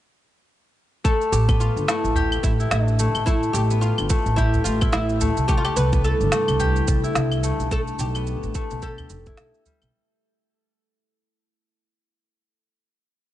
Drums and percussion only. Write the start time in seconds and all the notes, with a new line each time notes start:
1.05 kick, shaker
1.21 shaker
1.33 shaker
1.49 kick, claves, shaker
1.61 shaker
1.77 shaker
1.88 snare, shaker
2.05 shaker
2.15 udu, shaker
2.32 claves, shaker
2.44 kick, shaker
2.60 shaker
2.71 snare, shaker
2.88 shaker
2.99 shaker
3.15 claves, shaker
3.27 kick, shaker
3.43 shaker
3.55 shaker
3.71 shaker
3.82 shaker
3.98 claves, shaker
4.10 kick, shaker
4.26 shaker
4.38 kick, shaker
4.54 udu, shaker
4.65 shaker
4.81 kick, claves, shaker
4.93 snare, shaker
5.09 shaker
5.21 udu, shaker
5.37 shaker
5.49 kick, shaker
5.65 claves, shaker
5.77 shaker
5.93 kick, shaker
6.04 shaker
6.21 shaker
6.32 snare, shaker
6.48 claves, shaker
6.60 udu, shaker
6.76 shaker
6.88 kick, shaker
7.04 shaker
7.15 snare, shaker
7.32 claves, shaker
7.44 shaker
7.60 shaker
7.71 kick, shaker
7.88 shaker
7.99 shaker
8.15 claves, shaker
8.27 shaker
8.43 shaker
8.55 kick, shaker
8.71 shaker
8.82 kick, shaker
8.98 udu, claves, shaker
9.10 shaker
9.26 kick, shaker
9.37 snare, shaker
9.54 shaker
9.66 udu, shaker
9.82 claves, shaker